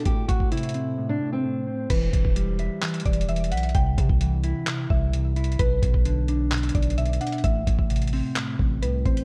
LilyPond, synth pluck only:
\new Staff \with { instrumentName = "Synth pluck" } { \time 4/4 \key e \minor \tempo 4 = 130 r1 | b'2~ b'8 d''8 e''8 fis''8 | g''2~ g''8 e''8 r4 | b'2~ b'8 d''8 e''8 fis''8 |
e''2 r4 b'8 c''8 | }